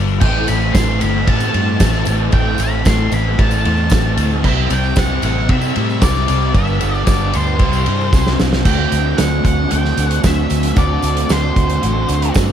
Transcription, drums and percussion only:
0.08 tambourine
0.21 kick, tambourine, crash
0.48 ride, tambourine
0.62 tambourine
0.75 kick, snare, ride, tambourine
0.89 tambourine
1.01 ride, tambourine
1.27 kick, ride
1.40 tambourine
1.54 ride, tambourine
1.80 kick, snare, ride, tambourine
1.94 snare, tambourine
2.05 ride, tambourine
2.32 kick, ride, tambourine
2.58 ride, tambourine
2.72 tambourine
2.85 kick, snare, ride, tambourine
3.12 ride, tambourine
3.39 kick, ride
3.51 tambourine
3.65 ride, tambourine
3.77 tambourine
3.90 kick, snare, ride, tambourine
4.17 ride, tambourine
4.31 tambourine
4.44 kick, crash, tambourine
4.70 ride, tambourine
4.83 tambourine
4.96 kick, snare, ride, tambourine
5.09 tambourine
5.22 ride, tambourine
5.49 kick, ride
5.62 tambourine
5.76 ride, tambourine
5.90 tambourine
6.01 kick, snare, ride, tambourine
6.16 snare, tambourine
6.28 ride, tambourine
6.42 tambourine
6.55 kick, ride, tambourine
6.67 tambourine
6.81 ride, tambourine
6.95 tambourine
7.07 kick, snare, ride, tambourine
7.21 tambourine
7.33 ride, tambourine
7.59 kick, ride, tambourine
7.73 tambourine
7.86 ride, tambourine
8.01 tambourine
8.13 kick, snare, tambourine
8.26 snare, tambourine
8.39 snare, tambourine
8.53 snare, tambourine
8.65 kick, crash, tambourine
8.92 closed hi-hat, tambourine
9.18 snare, closed hi-hat, tambourine
9.45 kick, closed hi-hat, tambourine
9.71 closed hi-hat, tambourine
9.85 snare
9.97 closed hi-hat, tambourine
10.11 closed hi-hat
10.24 kick, snare, closed hi-hat, tambourine
10.50 closed hi-hat, tambourine
10.63 closed hi-hat
10.76 kick, closed hi-hat, tambourine
11.02 closed hi-hat, tambourine
11.17 closed hi-hat
11.29 snare, closed hi-hat, tambourine
11.56 kick, closed hi-hat, tambourine
11.69 closed hi-hat
11.83 closed hi-hat, tambourine
12.09 closed hi-hat, tambourine
12.22 closed hi-hat
12.34 kick, snare, closed hi-hat, tambourine

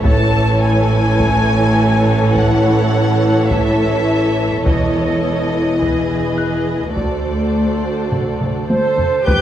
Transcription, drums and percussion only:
0.04 taiko
1.19 taiko
2.35 taiko
3.50 taiko
4.66 taiko
5.81 taiko
6.96 taiko
8.12 taiko low-mid
8.41 taiko low-mid
8.70 taiko high
8.98 taiko low
9.27 taiko

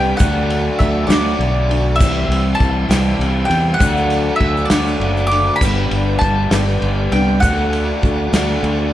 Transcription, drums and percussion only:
0.19 kick, ride, shaker
0.50 ride
0.80 kick, ride, shaker
1.10 snare, ride, shaker
1.41 ride
1.71 ride
2.00 kick, crash, shaker
2.32 ride
2.60 kick, ride, shaker
2.91 snare, ride, shaker
3.21 ride
3.51 ride
3.81 kick, ride, shaker
3.97 shaker
4.10 ride, shaker
4.41 kick, ride
4.57 shaker
4.70 snare, ride, shaker
4.87 shaker
5.01 ride
5.17 shaker
5.31 ride
5.61 kick, crash, shaker
5.91 ride
6.21 kick, ride, shaker
6.51 snare, ride, shaker
6.82 ride
7.12 ride
7.42 kick, ride, shaker
7.73 ride
8.03 kick, ride, shaker
8.34 snare, ride, shaker
8.64 ride

